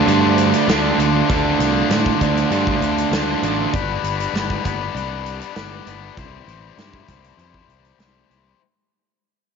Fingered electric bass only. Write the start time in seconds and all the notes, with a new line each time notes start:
0.07 G2
0.68 D2
0.98 D2
1.30 D2
1.59 C2
1.89 A2
2.21 D2
2.50 G2
2.81 D2
3.11 D2
3.42 A1
3.74 G1
4.04 G1
4.33 G1
4.65 G1
4.95 C2
5.57 G1
5.87 G1
6.18 C2
6.48 A1
6.78 G2
7.09 C2
7.37 F2
7.68 C2
7.99 C2
8.30 C2